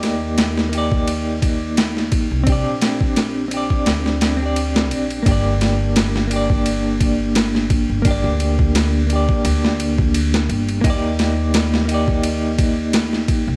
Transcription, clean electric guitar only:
0.00 0.67 A#3 loud
0.00 0.68 D#4 medium
0.00 0.70 G4 medium
0.00 0.71 D5 loud
0.69 2.41 A#3 loud
0.69 2.43 D#4 medium
0.75 2.44 G4 medium
0.75 2.46 D5 loud
2.44 3.46 C4 medium
2.44 3.48 D4 medium
2.50 3.49 G4 medium
2.50 3.50 D5 loud
3.48 4.35 C4 medium
3.48 4.36 D4 medium
3.54 4.38 G4 medium
3.54 4.39 D5 medium
4.37 5.20 C4 medium
4.37 5.22 D4 medium
4.43 5.23 G4 medium
4.43 5.25 D5 loud
5.23 6.25 A#3 medium
5.23 6.27 D4 medium
5.28 6.28 G4 medium
5.28 6.30 D5 loud
6.27 8.00 A#3 loud
6.27 8.01 D4 medium
6.33 8.02 G4 medium
6.33 8.04 D5 loud
8.02 9.04 A#3 loud
8.02 9.06 D4 medium
8.08 9.07 G4 medium
8.08 9.09 D5 loud
9.07 10.79 A#3 medium
9.07 10.80 D4 medium
9.13 10.82 G4 medium
9.13 10.83 D5 medium
10.81 11.84 A#3 loud
10.81 11.85 D#4 medium
10.87 11.86 G4 medium
10.87 11.88 D5 loud
11.85 13.56 A#3 medium
11.85 13.56 D#4 medium
11.91 13.56 G4 medium
11.91 13.56 D5 loud

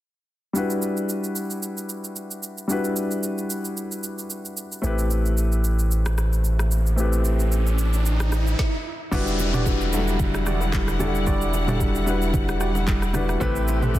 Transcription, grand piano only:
0.53 2.65 G3 medium
0.53 2.65 D4 medium
0.53 2.66 E4 medium
0.53 2.66 F#4 medium
0.58 2.67 B4 medium
2.68 4.79 G3 medium
2.68 4.79 D4 medium
2.68 4.80 E4 medium
2.68 4.81 F#4 medium
2.72 4.81 B4 medium
4.82 6.93 A3 medium
4.82 6.94 C4 medium
4.82 6.94 E4 medium
4.82 6.95 G4 medium
4.86 6.95 B4 medium
6.96 8.55 A3 medium
6.96 8.55 C4 medium
6.96 8.56 E4 medium
6.96 8.56 G4 medium
7.01 8.57 B4 medium
9.11 9.45 G3 loud
9.11 9.45 D4 loud
9.11 9.45 E4 loud
9.11 9.46 F#4 loud
9.11 9.46 B4 loud
9.53 9.85 G3 medium
9.53 9.85 D4 medium
9.53 9.86 E4 medium
9.53 9.86 F#4 medium
9.53 9.86 B4 medium
9.92 9.99 F#3 medium
9.92 10.79 D4 medium
9.92 10.79 E4 medium
9.92 10.80 F#4 medium
9.92 10.80 A4 medium
9.98 10.82 G3 medium
10.99 11.53 G3 medium
10.99 11.53 D4 medium
10.99 11.54 E4 medium
10.99 11.54 F#4 medium
10.99 11.54 A4 medium
11.67 11.99 G3 medium
11.67 12.00 D4 medium
11.67 12.00 E4 medium
11.67 12.00 F#4 medium
11.67 12.01 A4 medium
12.06 12.93 G3 medium
12.06 12.93 D4 medium
12.06 12.93 E4 medium
12.06 12.94 F#4 medium
12.06 12.94 B4 medium
13.13 13.36 G3 medium
13.13 13.36 D4 medium
13.13 13.36 E4 medium
13.13 13.37 F#4 medium
13.13 13.37 B4 medium
13.40 13.73 A3 loud
13.40 13.74 C4 loud
13.40 13.74 E4 loud
13.40 13.74 G4 loud
13.40 13.74 B4 loud
13.82 13.99 A3 medium
13.82 13.99 C4 medium
13.82 13.99 E4 medium
13.82 13.99 G4 medium
13.82 13.99 A4 medium

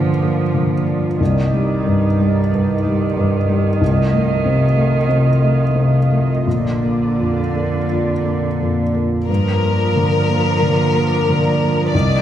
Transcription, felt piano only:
0.00 1.23 G2 soft
0.00 0.54 D3 soft
0.00 0.22 A#3 soft
0.22 0.74 A#3 soft
0.54 1.07 D3 soft
0.87 1.20 A#3 soft
1.20 2.49 C2 soft
1.53 2.07 G3 soft
1.87 2.39 G2 soft
2.20 2.72 G3 soft
2.53 3.05 G2 soft
2.85 3.36 G3 soft
3.17 3.68 G2 soft
3.49 3.81 G3 soft
3.81 5.05 C2 soft
4.13 4.64 A3 soft
4.46 4.96 C3 soft
4.77 5.29 A3 soft
5.09 5.62 C3 soft
5.43 5.97 A3 soft
5.75 6.31 C3 soft
6.11 6.46 A3 soft
6.47 7.86 A#1 soft
6.83 7.40 A#3 soft
7.19 7.76 F2 soft
7.55 8.11 A#3 soft
7.91 8.46 F2 soft
8.25 8.81 A#3 soft
8.61 9.16 F2 soft
8.94 9.29 A#3 soft
9.29 10.58 G2 soft
9.63 10.16 A#3 soft
9.96 10.49 D3 soft
10.29 10.82 A#3 soft
10.62 11.16 D3 soft
10.95 11.48 A#3 soft
11.29 11.81 D3 soft
11.62 11.94 A#3 soft
11.94 12.22 C2 soft

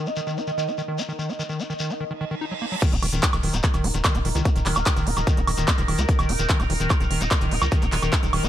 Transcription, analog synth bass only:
2.92 3.00 D#1 medium
3.03 3.10 D#1 loud
3.13 3.20 D#1 loud
3.33 3.40 D#1 medium
3.43 3.51 D#1 loud
3.54 3.61 D#1 medium
3.74 3.81 D#1 medium
3.84 3.91 D#1 loud
3.94 4.02 D#1 medium
4.15 4.22 D#1 medium
4.25 4.32 D#1 loud
4.35 4.42 C#2 medium
4.56 4.63 D#1 medium
4.66 4.73 D#1 loud
4.76 4.83 D#1 medium
4.96 5.04 D#1 medium
5.07 5.14 D#1 loud
5.17 5.24 D#1 loud
5.37 5.44 D#1 medium
5.47 5.55 D#1 loud
5.58 5.65 D#1 loud
5.78 5.85 D#1 medium
5.88 5.95 D#1 loud
5.98 6.06 C#2 medium
6.19 6.26 D#1 medium
6.29 6.36 D#1 loud
6.39 6.46 D#1 loud
6.60 6.67 D#1 medium
6.70 6.77 D#1 loud
6.80 6.87 D#1 medium
7.00 7.08 D#1 medium
7.11 7.18 D#1 loud
7.21 7.28 D#1 medium
7.41 7.48 D#1 medium
7.52 7.59 D#1 loud
7.62 7.69 C#2 medium
7.82 7.89 D#1 medium
7.92 8.00 D#1 loud
8.03 8.10 D#1 medium
8.23 8.30 D#1 medium
8.33 8.40 D#1 loud
8.43 8.49 D#1 medium

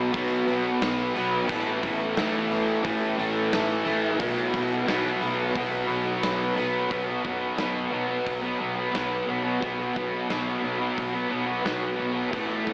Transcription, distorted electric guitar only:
0.00 0.11 B2 medium
0.00 0.13 F#3 medium
0.00 0.15 B3 medium
0.13 0.81 B2 medium
0.13 0.49 F#3 medium
0.13 0.46 B3 loud
0.47 1.16 F#3 medium
0.47 1.13 B3 medium
1.14 1.48 F#3 medium
1.14 1.46 B3 medium
1.47 2.15 A2 medium
1.47 2.16 E3 loud
1.47 2.19 A3 loud
2.16 2.82 A2 medium
2.16 2.83 E3 medium
2.16 2.84 A3 medium
2.83 3.51 A2 medium
2.83 3.19 E3 medium
2.83 3.16 A3 loud
3.17 3.87 E3 medium
3.17 3.84 A3 medium
3.85 4.19 E3 medium
3.85 4.17 A3 medium
4.18 4.85 B2 medium
4.18 4.86 F#3 medium
4.18 4.88 B3 loud
4.86 5.53 B2 medium
4.86 5.55 F#3 medium
4.86 5.56 B3 medium
5.54 6.22 B2 medium
5.54 5.90 F#3 medium
5.54 5.86 B3 medium
5.88 6.58 F#3 medium
5.88 6.55 B3 medium
6.56 6.90 F#3 medium
6.56 6.88 B3 medium
6.89 7.23 B2 medium
6.89 7.09 F#3 loud
6.89 7.06 B3 loud
7.07 7.25 F#3 medium
7.07 7.27 B3 medium
7.23 7.56 B2 medium
7.23 7.58 F#3 medium
7.23 7.59 B3 medium
7.57 7.90 B2 medium
7.57 7.92 F#3 medium
7.57 7.93 B3 loud
7.90 8.42 B2 medium
7.90 8.10 F#3 medium
7.90 8.06 B3 medium
8.07 8.44 F#3 medium
8.07 8.41 B3 medium
8.42 8.59 F#3 medium
8.42 8.60 B3 medium
8.58 8.90 B2 medium
8.58 8.78 F#3 medium
8.58 8.74 B3 medium
8.76 8.93 F#3 medium
8.76 8.94 B3 medium
8.92 9.26 B2 medium
8.92 9.27 F#3 loud
8.92 9.29 B3 loud
9.27 9.59 B2 medium
9.27 9.46 F#3 medium
9.27 9.42 B3 medium
9.43 9.61 F#3 medium
9.43 9.63 B3 medium
9.61 9.94 B2 medium
9.61 9.81 F#3 medium
9.61 9.78 B3 loud
9.79 9.95 F#3 medium
9.79 9.97 B3 medium
9.95 10.28 B2 medium
9.95 10.29 F#3 medium
9.95 10.30 B3 medium
10.29 10.61 B2 loud
10.29 10.63 F#3 medium
10.29 10.64 B3 loud
10.62 11.13 B2 medium
10.62 10.80 F#3 medium
10.62 10.77 B3 medium
10.79 11.15 F#3 medium
10.79 11.11 B3 medium
11.13 11.29 F#3 medium
11.13 11.31 B3 medium
11.29 11.61 B2 medium
11.29 11.49 F#3 medium
11.29 11.45 B3 medium
11.46 11.62 F#3 medium
11.46 11.64 B3 medium
11.62 11.95 B2 medium
11.62 11.97 F#3 medium
11.62 11.99 B3 loud
11.96 12.29 B2 medium
11.96 12.15 F#3 medium
11.96 12.12 B3 medium
12.13 12.31 F#3 medium
12.13 12.29 B3 medium
12.31 12.64 A2 medium
12.31 12.52 E3 medium
12.31 12.47 A3 medium
12.48 12.68 A3 medium
12.52 12.66 E3 medium
12.65 12.73 A2 medium
12.65 12.73 E3 medium
12.65 12.73 A3 medium

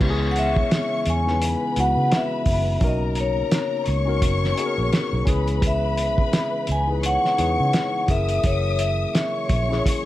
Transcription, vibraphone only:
0.31 0.36 F#5 medium
0.39 1.10 E5 loud
1.10 1.80 G#5 loud
1.80 2.14 F#5 loud
2.16 2.50 E5 loud
2.51 2.82 E5 medium
2.87 3.02 D#5 loud
3.20 4.55 C#5 medium
5.67 6.73 E5 loud
6.72 6.87 G#5 loud
7.06 8.06 F#5 loud
8.11 8.43 E5 loud
8.46 8.81 C#5 medium
8.80 9.81 E5 medium

